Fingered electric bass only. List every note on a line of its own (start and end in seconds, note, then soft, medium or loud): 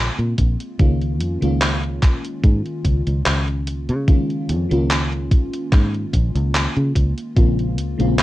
0.19 0.34 A#2 medium
0.38 0.55 A#1 medium
0.79 1.21 C#2 medium
1.21 1.37 F2 medium
1.42 2.03 C#2 medium
2.03 2.19 A#1 medium
2.44 2.60 G#2 medium
2.85 3.02 C#2 medium
3.07 3.22 C#2 medium
3.26 3.91 C#2 medium
3.89 4.51 C#3 medium
4.49 4.66 F2 medium
4.71 5.31 C#2 medium
5.31 5.48 A#1 medium
5.72 6.04 G#2 medium
6.13 6.30 A#1 medium
6.35 6.66 C#2 medium
6.77 6.91 C#3 medium
6.95 7.12 C#2 medium
7.37 7.78 A#1 medium
7.78 7.95 C#2 medium
8.00 8.23 A#1 medium